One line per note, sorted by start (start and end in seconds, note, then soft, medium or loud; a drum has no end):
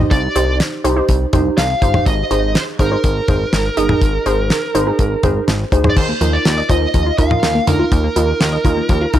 0.00 0.18 D#4 medium
0.00 0.18 G4 medium
0.00 0.18 D#5 medium
0.11 0.28 C2 loud
0.11 0.57 D5 medium
0.11 kick loud
0.11 closed hi-hat medium
0.36 0.61 C2 loud
0.36 0.55 D#4 medium
0.36 0.55 G4 medium
0.36 0.55 C5 medium
0.36 closed hi-hat medium
0.60 snare loud
0.60 closed hi-hat medium
0.84 1.02 C2 loud
0.84 0.94 D#4 medium
0.84 0.94 G4 medium
0.84 0.94 C5 loud
0.84 closed hi-hat medium
0.97 1.16 D#4 medium
0.97 1.16 G4 medium
0.97 1.16 C5 medium
1.09 1.26 C2 loud
1.09 kick medium
1.09 closed hi-hat medium
1.33 1.50 C2 loud
1.33 1.52 D#4 medium
1.33 1.52 G4 medium
1.33 1.52 C5 loud
1.33 kick medium
1.33 closed hi-hat medium
1.33 mid tom loud
1.58 1.75 C2 loud
1.58 2.06 F5 loud
1.58 snare loud
1.58 closed hi-hat medium
1.82 1.99 G1 medium
1.82 1.92 D#4 medium
1.82 1.92 G4 medium
1.82 1.92 C5 medium
1.82 kick medium
1.82 closed hi-hat medium
1.94 2.06 D#4 medium
1.94 2.06 G4 medium
1.94 2.06 C5 medium
1.94 mid tom medium
2.06 2.23 G#1 loud
2.06 2.57 D#5 loud
2.06 kick loud
2.06 closed hi-hat medium
2.31 2.56 G#1 loud
2.31 2.50 D#4 medium
2.31 2.50 G#4 medium
2.31 2.50 C5 medium
2.31 closed hi-hat medium
2.55 2.62 C5 medium
2.55 snare loud
2.55 closed hi-hat medium
2.79 2.96 G#1 loud
2.79 2.89 D#4 medium
2.79 2.89 G#4 medium
2.79 5.44 A#4 medium
2.79 2.89 C5 medium
2.79 kick loud
2.79 closed hi-hat medium
2.92 3.11 D#4 medium
2.92 3.11 G#4 medium
2.92 3.11 C5 medium
3.04 3.21 G#1 loud
3.04 kick medium
3.04 closed hi-hat medium
3.28 3.45 G#1 loud
3.28 3.47 D#4 medium
3.28 3.47 G#4 medium
3.28 3.47 C5 medium
3.28 kick medium
3.28 closed hi-hat medium
3.28 mid tom medium
3.53 3.70 G#1 loud
3.53 snare loud
3.53 closed hi-hat medium
3.77 3.94 G1 medium
3.77 3.87 D#4 medium
3.77 3.87 G#4 medium
3.77 3.87 D#5 loud
3.77 closed hi-hat medium
3.89 4.08 D#4 medium
3.89 4.08 G#4 medium
3.89 4.08 D#5 medium
3.89 mid tom medium
4.01 4.19 G#1 loud
4.01 kick loud
4.01 closed hi-hat medium
4.26 4.52 G#1 loud
4.26 4.45 D#4 medium
4.26 4.45 G#4 medium
4.26 4.45 C5 medium
4.26 closed hi-hat medium
4.50 snare loud
4.50 closed hi-hat medium
4.75 4.92 G#1 loud
4.75 4.84 D#4 medium
4.75 4.84 G#4 medium
4.75 4.84 C5 loud
4.75 closed hi-hat medium
4.87 5.06 D#4 medium
4.87 5.06 G#4 medium
4.87 5.06 A#4 medium
4.99 5.16 G#1 loud
4.99 kick medium
4.99 closed hi-hat medium
5.23 5.41 G#1 loud
5.23 5.43 D#4 medium
5.23 5.43 G#4 medium
5.23 5.43 C5 loud
5.23 kick medium
5.23 closed hi-hat medium
5.23 mid tom medium
5.48 5.65 G#1 loud
5.48 snare loud
5.48 closed hi-hat medium
5.72 5.89 D2 medium
5.72 5.82 D#4 medium
5.72 5.82 G#4 medium
5.72 5.82 C5 medium
5.72 kick medium
5.72 closed hi-hat medium
5.84 5.97 D#4 medium
5.84 5.97 G#4 medium
5.84 5.97 C5 medium
5.84 mid tom medium
5.90 5.97 D5 medium
5.97 6.14 D#2 loud
5.97 6.03 D#3 medium
5.97 6.34 C5 medium
5.97 kick loud
5.97 crash medium
6.09 6.15 A#3 medium
6.21 6.38 D#2 loud
6.21 6.27 F3 medium
6.21 6.40 D#4 medium
6.21 6.40 F4 medium
6.21 6.40 A#4 medium
6.21 closed hi-hat medium
6.33 6.69 D5 loud
6.45 6.62 D#2 loud
6.45 6.52 A#3 medium
6.45 snare loud
6.45 closed hi-hat medium
6.58 6.64 D#5 medium
6.70 6.87 D#2 loud
6.70 6.76 D#3 medium
6.70 6.89 D#4 medium
6.70 6.89 F4 medium
6.70 6.89 C5 medium
6.70 7.18 D#5 loud
6.70 kick loud
6.70 closed hi-hat medium
6.82 6.88 A#3 medium
6.94 7.11 D#2 loud
6.94 7.01 F3 medium
6.94 kick medium
6.94 closed hi-hat medium
7.06 7.13 F4 medium
7.18 7.36 D#2 loud
7.18 7.28 D#4 medium
7.18 7.28 F4 medium
7.18 7.28 A#4 medium
7.18 7.69 F5 loud
7.18 kick medium
7.18 closed hi-hat medium
7.31 7.50 D#4 medium
7.31 7.50 F4 medium
7.31 7.50 A#4 medium
7.31 7.37 D#5 medium
7.31 mid tom medium
7.43 7.60 D#2 loud
7.43 7.49 D#3 medium
7.43 snare loud
7.43 closed hi-hat medium
7.55 7.62 A#3 medium
7.67 7.84 D2 medium
7.67 7.86 D#4 medium
7.67 7.86 F4 medium
7.67 7.86 A#4 medium
7.67 9.19 A#4 medium
7.67 closed hi-hat medium
7.67 mid tom medium
7.79 7.86 F4 loud
7.92 8.09 D#2 loud
7.92 7.98 D#3 medium
7.92 kick loud
7.92 closed hi-hat medium
8.04 8.10 A#3 medium
8.16 8.33 D#2 loud
8.16 8.23 F3 medium
8.16 8.35 D#4 medium
8.16 8.35 F4 medium
8.16 8.35 A#4 medium
8.16 closed hi-hat medium
8.40 8.58 D#2 loud
8.40 8.47 A#3 medium
8.40 snare loud
8.40 closed hi-hat medium
8.53 8.59 D#5 medium
8.65 8.82 D#2 loud
8.65 8.71 D#3 medium
8.65 8.84 D#4 medium
8.65 8.84 F4 medium
8.65 8.84 A#4 loud
8.65 kick loud
8.65 closed hi-hat medium
8.77 8.84 A#3 medium
8.89 9.06 D#2 loud
8.89 8.96 F3 medium
8.89 kick medium
8.89 closed hi-hat medium
9.01 9.08 F4 medium
9.13 9.19 D#2 loud
9.13 9.19 D#4 medium
9.13 9.19 F4 medium
9.13 9.19 A#4 loud
9.13 kick medium
9.13 closed hi-hat medium